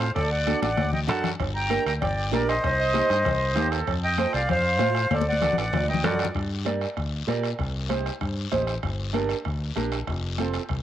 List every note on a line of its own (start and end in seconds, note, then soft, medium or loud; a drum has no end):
0.00 0.12 C5 medium
0.00 0.11 F5 medium
0.00 bombo rim medium
0.00 short guiro medium
0.15 0.53 D2 medium
0.15 0.30 A4 medium
0.15 0.30 D5 loud
0.15 bombo low medium
0.15 bombo rim medium
0.15 cowbell medium
0.15 high conga soft
0.15 long guiro medium
0.31 0.60 D5 medium
0.31 0.60 F#5 medium
0.47 0.68 D4 medium
0.47 0.69 F#4 medium
0.47 0.69 A4 medium
0.47 bombo rim medium
0.47 cowbell medium
0.47 high conga medium
0.47 short guiro medium
0.62 0.75 A1 medium
0.62 0.91 D5 medium
0.62 0.91 F#5 medium
0.62 bombo rim medium
0.62 high conga medium
0.62 short guiro medium
0.77 1.09 D2 loud
0.77 bombo low medium
0.77 bombo rim medium
0.77 cowbell medium
0.77 high conga medium
0.77 long guiro medium
0.93 1.00 D#5 medium
0.93 1.00 G5 medium
0.93 low conga medium
1.07 1.34 F#2 medium
1.07 1.30 D4 medium
1.07 1.30 F#4 medium
1.07 1.30 A4 medium
1.07 1.30 F#5 medium
1.07 1.30 A5 medium
1.07 bombo rim medium
1.07 cowbell medium
1.07 low conga medium
1.07 short guiro medium
1.24 bombo rim medium
1.24 low conga medium
1.24 short guiro medium
1.40 1.77 G1 medium
1.40 bombo low medium
1.40 bombo rim medium
1.40 cowbell medium
1.40 high conga soft
1.40 long guiro medium
1.55 1.84 G5 medium
1.55 1.84 A#5 loud
1.69 1.92 D4 medium
1.69 1.92 G4 medium
1.69 1.92 A#4 medium
1.69 bombo rim medium
1.69 cowbell medium
1.69 high conga medium
1.69 short guiro medium
1.86 1.98 D2 medium
1.86 1.93 G5 medium
1.86 1.93 A#5 loud
1.86 bombo rim medium
1.86 short guiro medium
2.02 2.33 G1 medium
2.02 2.30 D5 medium
2.02 2.30 G5 medium
2.02 bombo low medium
2.02 bombo rim medium
2.02 cowbell medium
2.02 high conga soft
2.02 low conga medium
2.02 long guiro medium
2.31 2.57 A#1 medium
2.31 2.53 D4 medium
2.31 2.54 G4 medium
2.31 2.54 A#4 medium
2.31 2.48 A#4 medium
2.31 2.49 D5 medium
2.31 bombo rim medium
2.31 cowbell medium
2.31 high conga medium
2.31 low timbale medium
2.31 short guiro medium
2.49 3.68 C5 medium
2.49 3.68 D#5 loud
2.49 bombo rim medium
2.49 short guiro medium
2.64 3.01 C2 medium
2.64 bombo low medium
2.64 bombo rim medium
2.64 cowbell loud
2.64 high conga soft
2.64 long guiro medium
2.80 3.08 D#5 loud
2.93 3.16 D#4 medium
2.93 3.16 G4 medium
2.93 3.16 C5 medium
2.93 bombo rim medium
2.93 cowbell medium
2.93 high conga medium
2.93 short guiro medium
3.10 3.22 G2 medium
3.10 3.18 D#5 loud
3.10 bombo rim medium
3.10 short guiro medium
3.25 3.57 C2 loud
3.25 3.59 C5 medium
3.25 bombo low medium
3.25 bombo rim medium
3.25 cowbell medium
3.25 high conga soft
3.25 low conga medium
3.25 long guiro medium
3.55 3.81 D#2 medium
3.55 3.78 D#4 medium
3.55 3.78 G4 medium
3.55 3.73 G4 medium
3.55 3.78 C5 medium
3.55 bombo rim medium
3.55 cowbell medium
3.55 high conga medium
3.55 short guiro medium
3.71 3.95 A4 medium
3.71 bombo rim medium
3.71 short guiro medium
3.87 4.25 F2 medium
3.87 bombo low medium
3.87 bombo rim medium
3.87 cowbell medium
3.87 high conga soft
3.87 long guiro medium
4.04 4.32 D#5 medium
4.04 4.32 G5 loud
4.18 4.40 F4 medium
4.18 4.40 A4 medium
4.18 4.40 C5 medium
4.18 bombo rim medium
4.18 cowbell medium
4.18 high conga medium
4.18 short guiro medium
4.33 4.46 C2 medium
4.33 4.49 D5 medium
4.33 4.49 F5 loud
4.33 bombo rim medium
4.33 short guiro medium
4.49 4.80 F2 loud
4.49 5.08 C5 medium
4.49 5.14 F5 loud
4.49 bombo low medium
4.49 bombo rim medium
4.49 cowbell medium
4.49 high conga soft
4.49 low conga medium
4.49 long guiro medium
4.79 5.05 A2 medium
4.79 5.01 F4 medium
4.79 5.01 A4 medium
4.79 5.01 C5 medium
4.79 bombo rim medium
4.79 cowbell medium
4.79 high conga medium
4.79 low timbale medium
4.79 short guiro medium
4.95 bombo rim medium
4.95 short guiro medium
5.11 5.48 D2 medium
5.11 5.26 A4 medium
5.11 5.26 D5 loud
5.11 bombo low medium
5.11 bombo rim medium
5.11 cowbell medium
5.11 high conga medium
5.11 long guiro medium
5.21 high conga medium
5.28 5.56 D5 medium
5.28 5.57 F#5 medium
5.33 high conga medium
5.41 5.63 F#4 medium
5.41 5.63 A4 medium
5.41 5.64 D5 medium
5.41 bombo rim medium
5.41 cowbell medium
5.41 low conga medium
5.41 high timbale medium
5.41 short guiro medium
5.53 low conga loud
5.57 5.70 A1 medium
5.57 5.87 D5 medium
5.57 5.87 F#5 medium
5.57 bombo rim medium
5.57 high timbale medium
5.57 short guiro medium
5.73 6.04 D2 loud
5.73 bombo low medium
5.73 bombo rim medium
5.73 cowbell medium
5.73 low conga loud
5.73 low timbale medium
5.73 long guiro medium
5.88 6.03 D#5 medium
5.88 6.03 G5 medium
5.88 low timbale medium
5.94 low conga loud
6.03 6.29 F#2 medium
6.03 6.25 F#4 medium
6.03 6.26 A4 medium
6.03 6.26 D5 medium
6.03 6.26 F#5 medium
6.03 bombo rim medium
6.03 cowbell medium
6.03 low conga loud
6.03 low timbale loud
6.03 short guiro medium
6.15 low conga medium
6.19 bombo rim medium
6.19 low timbale medium
6.19 short guiro medium
6.25 low conga loud
6.35 6.85 G2 medium
6.35 bombo low medium
6.35 bombo rim medium
6.35 high conga soft
6.35 long guiro medium
6.65 6.87 G4 medium
6.65 6.87 A#4 medium
6.65 6.88 D5 medium
6.65 bombo rim medium
6.65 high conga medium
6.65 short guiro medium
6.81 bombo rim medium
6.81 short guiro medium
6.97 7.22 D2 medium
6.97 bombo low medium
6.97 bombo rim medium
6.97 high conga soft
6.97 long guiro medium
7.27 7.53 A#2 medium
7.27 7.49 G4 medium
7.27 7.50 A#4 medium
7.27 7.50 D5 medium
7.27 bombo rim medium
7.27 high conga medium
7.27 short guiro medium
7.43 bombo rim medium
7.43 short guiro medium
7.59 8.09 C2 loud
7.59 bombo low medium
7.59 bombo rim medium
7.59 high conga soft
7.59 long guiro medium
7.89 8.11 D#4 medium
7.89 8.11 G4 medium
7.89 8.11 C5 medium
7.89 bombo rim medium
7.89 high conga medium
7.89 short guiro medium
8.06 bombo rim medium
8.06 short guiro medium
8.21 8.46 G2 medium
8.21 bombo low medium
8.21 bombo rim medium
8.21 high conga soft
8.21 long guiro medium
8.52 8.77 A1 medium
8.52 8.74 D#4 medium
8.52 8.74 G4 medium
8.52 8.74 C5 medium
8.52 bombo low medium
8.52 bombo rim medium
8.52 high conga medium
8.52 short guiro medium
8.67 bombo rim medium
8.67 short guiro medium
8.83 9.33 G1 medium
8.83 bombo low medium
8.83 bombo rim medium
8.83 high conga soft
8.83 long guiro medium
9.13 9.35 D4 medium
9.13 9.36 G4 medium
9.13 9.36 A#4 medium
9.13 bombo rim medium
9.13 high conga medium
9.13 short guiro medium
9.29 bombo rim medium
9.29 short guiro medium
9.45 9.70 D2 medium
9.45 bombo low medium
9.45 bombo rim medium
9.45 high conga soft
9.45 long guiro medium
9.76 10.01 A#1 medium
9.76 9.98 D4 medium
9.76 9.98 G4 medium
9.76 9.99 A#4 medium
9.76 bombo rim medium
9.76 high conga medium
9.76 short guiro medium
9.92 bombo rim medium
9.92 short guiro medium
10.07 10.57 F1 medium
10.07 bombo low medium
10.07 bombo rim medium
10.07 high conga soft
10.07 long guiro medium
10.38 10.61 C4 medium
10.38 10.61 F4 medium
10.38 10.61 A4 medium
10.38 bombo rim medium
10.38 high conga medium
10.38 short guiro medium
10.54 bombo rim medium
10.54 short guiro medium
10.69 10.82 C2 medium
10.69 bombo low medium
10.69 bombo rim medium
10.69 high conga soft
10.69 long guiro medium